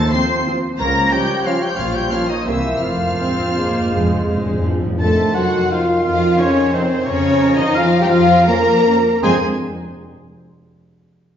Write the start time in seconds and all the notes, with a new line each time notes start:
Already playing: F3 A3 A4 C5 A5 A6
0.12 F3 C4 F4 C5 C6 C7
0.46 F3 C4 F4
0.78 C#2 F3 A#3 A#4 C#5 A#5 A#6
1.11 F3 G3 C#4 F4 G4 G5 G6
1.45 F3 C#4 F4 F5 F6
1.61 G3 G4 G5 G6
1.77 A#1 A#2 F3 F4 F5 F6
1.93 G3 G4 G5 G6
2.10 F3 C#4 F4 A#4 F5 F6
2.28 D#3 D#4 D#5 D#6
2.46 C2 C3 E3 G3 A#3 C4 E4 A#4 C5 E5 E6
2.81 F1 F2 F3 F4 C5 F5 F6
2.90 F2
2.98 F2
3.06 F2
3.15 F2 F3 G#3 C4
3.23 F2
3.31 F2
3.39 F2
3.48 F2
3.56 F2 F3 G#3 A#3
3.65 F2
3.73 F2
3.81 F2
3.89 F1 F2 G#3
3.97 F2
4.05 F2
4.12 F2
4.21 F2
4.28 F2 F3 G#3
4.37 F2
4.45 F2
4.54 F2
4.62 F2 F3 G#3
4.70 F2
4.79 F2
4.86 F2
4.99 F2 D#3 A3 A4 A5 C6
5.35 F2 F#3 D#4 F#4 C5 F#5
5.71 F2 F3 D#4 F4 C5 F5
6.04 F2 F3 F4 F5
6.38 F2 C#3 C#4 D#4 C5 C#5
6.74 F2 C3 C4 D#4 C5
7.06 F2 C#3 F3 C#4 C#5 A#5
7.40 F2 C#4 A#4
7.58 D#3 D#4 D#5
7.75 F2 F3 C#4 F4 A#4 F5
8.01 G3 G4 G5
8.09 F2 F3 F4 F5
8.46 F2 A#3 C#4 A#4 A#5
8.86 F2 C#4 A#4
9.22 F2 F3 G#3 C4 G#4 C5 G#5 C6